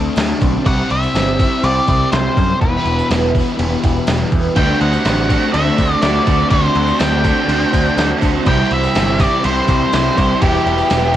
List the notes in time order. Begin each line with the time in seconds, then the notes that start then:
Already playing: D3 G3 A3 C4 D4 A4 A5 D6
0.16 D2 G3, snare, tambourine, crash
0.41 B1 A3 C4 D4, kick, tambourine, crash
0.65 C2 C3 G3 C4 C5 E5 F#5 C6, kick, tambourine, crash
0.91 C2 E5, tambourine, crash
1.03 tambourine
1.14 G1 C3 G3 C4, snare, tambourine, crash
1.39 E4, kick, tambourine, crash
1.52 tambourine
1.63 C2 C3 G3 C4 G4 D5, crash
1.86 C2 G3 C4 E4, kick, tambourine, crash
2.12 C2 G3 C5, snare, tambourine, crash
2.35 F#2 G3 C4, kick, tambourine, crash
2.60 E1 E2 B2 E3 G3 B4 E5 B5, kick, crash
2.74 tambourine
2.85 E1, tambourine, crash
2.99 tambourine
3.09 E1 E2 B2 E3 B3, snare, tambourine, crash
3.23 tambourine
3.34 E4, kick, tambourine, crash
3.58 E1 E2 B2 E3 G4, tambourine, crash
3.83 E1 B2 E3 E4, kick, tambourine, crash
3.96 tambourine
4.07 E1 G3, snare, tambourine, crash
4.20 tambourine
4.31 E2 B2 E3 B3, kick, tambourine, crash
4.44 tambourine
4.56 D2 D3 G3 A3 C4 D4 F#4 C5 D5 G5 A5, kick, tambourine, crash
4.81 D2 F#5, tambourine, crash
4.93 tambourine
5.04 A1 D3 A3 C4 D4, snare, tambourine, crash
5.30 A3 C4 D4 F#4, kick, tambourine, crash
5.42 tambourine
5.53 D2 D3 A3 C4 D4 F#4 A4 E5, crash
5.78 D2 A3 D4, kick, tambourine, crash
6.02 D2 D3 G3 A3 C4 F#4 D5, snare, tambourine, crash
6.26 D2 C4 D4 F#4, kick, tambourine, crash
6.30 A3
6.50 D2 D3 G3 A3 C4 D4 C5, kick, tambourine, crash
6.54 F#4
6.75 D2, tambourine, crash
6.87 tambourine
6.99 D2 D3 A3 C4 D4 G5, snare, tambourine, crash
7.24 A3 C4 D4 F#4, kick, tambourine, crash
7.37 tambourine
7.48 D2 D3 A3 C4 D4 F#4 A4, crash
7.73 D2 A3 D4, kick, tambourine, crash
7.97 D2 D3 G3 A3 C4 F#4, snare, tambourine, crash
8.21 D2 A3 C4 D4 F#4, kick, tambourine, crash
8.45 C2 C3 E3 G3 C4 E4 G4 E5 G5 C6, kick, tambourine, crash
8.71 C2 E5, tambourine, crash
8.83 tambourine
8.94 G1 C3 G3 C4, snare, tambourine, crash
9.19 G3 C4 E4 D5, kick, tambourine, crash
9.43 C2 C3 E3 G3 C4 E4 G4 C5, crash
9.67 C2 G3 C4 E4, kick, tambourine, crash
9.92 C2 E3 G3 C4 E4, snare, tambourine, crash
10.16 C2 G3 C4 E4, kick, tambourine, crash
10.40 E1 E2 B2 E3 G3 B3 E4 G4 B4 B5, kick, tambourine, crash
10.54 tambourine
10.66 E1, tambourine, crash
10.78 tambourine
10.89 E1 E2 B2 E3 B3, snare, tambourine, crash